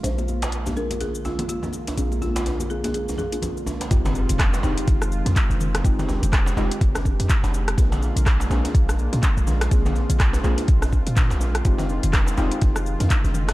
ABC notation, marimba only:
X:1
M:4/4
L:1/16
Q:"Swing 16ths" 1/4=124
K:Fdor
V:1 name="Marimba"
c z4 z B z A z F z F z3 | z2 F F z2 A A A2 A4 z2 | z16 | z16 |
z16 | z16 | z16 |]